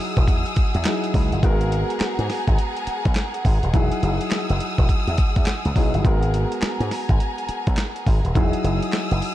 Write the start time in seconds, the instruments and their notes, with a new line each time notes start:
Already playing: grand piano F#3 D#4 E4 G#4, string section G#4 F#5 D#6 E6
0.17 slap bass E1, kick, closed hi-hat
0.28 slap bass E2, kick, closed hi-hat
0.46 closed hi-hat
0.56 muted slap bass stroke, kick, closed hi-hat
0.74 slap bass E2, closed hi-hat
0.85 grand piano F#3 D#4 E4 G#4, snare, clap, closed hi-hat
1.04 closed hi-hat
1.14 slap bass C#2, kick, open hi-hat
1.32 slap bass G1, closed hi-hat
1.42 slap bass G#1, grand piano G#3 B3 F#4 A#4, string section G#5 A#5, kick, closed hi-hat
1.61 closed hi-hat
1.72 closed hi-hat
1.90 closed hi-hat
2.00 muted slap bass stroke, snare, clap, closed hi-hat
2.19 slap bass G#2, closed hi-hat
2.30 snare, open hi-hat
2.47 slap bass G#1, kick, closed hi-hat
2.58 closed hi-hat
2.77 closed hi-hat
2.87 muted slap bass stroke, closed hi-hat
3.05 slap bass B1, kick, closed hi-hat
3.15 snare, clap, closed hi-hat
3.34 closed hi-hat
3.45 slap bass G#1, kick, open hi-hat
3.63 slap bass D#1, closed hi-hat
3.73 slap bass E1, grand piano F#3 D#4 E4 G#4, string section D#6 E6, kick, closed hi-hat
3.92 closed hi-hat
4.03 slap bass F#1, closed hi-hat
4.21 closed hi-hat
4.31 snare, clap, closed hi-hat
4.50 slap bass F#1, closed hi-hat
4.60 closed hi-hat
4.78 slap bass E1, kick, closed hi-hat
4.89 kick, closed hi-hat
5.07 slap bass E2, closed hi-hat
5.18 kick, closed hi-hat
5.36 slap bass E2, kick, closed hi-hat
5.46 snare, clap, closed hi-hat
5.65 slap bass C#2, closed hi-hat
5.76 slap bass B1, grand piano F#3 D#4 E4 G#4, kick, open hi-hat
5.94 slap bass G1, closed hi-hat
6.04 slap bass G#1, grand piano G#3 B3 F#4 A#4, string section G#5 A#5, kick, closed hi-hat
6.23 closed hi-hat
6.34 closed hi-hat
6.52 closed hi-hat
6.62 muted slap bass stroke, snare, clap, closed hi-hat
6.80 slap bass G#2, closed hi-hat
6.91 snare, open hi-hat
7.09 slap bass G#1, kick, closed hi-hat
7.20 closed hi-hat
7.38 closed hi-hat
7.49 muted slap bass stroke, closed hi-hat
7.67 slap bass B1, kick, closed hi-hat
7.77 snare, clap, closed hi-hat
7.96 closed hi-hat
8.06 slap bass G#1, kick, open hi-hat
8.25 slap bass D#1, closed hi-hat
8.35 slap bass E1, grand piano F#3 D#4 E4 G#4, string section G#4 D#6 E6, kick, closed hi-hat
8.53 closed hi-hat
8.64 slap bass F#1, closed hi-hat
8.82 closed hi-hat
8.93 snare, clap, closed hi-hat
9.11 slap bass F#1, closed hi-hat
9.22 open hi-hat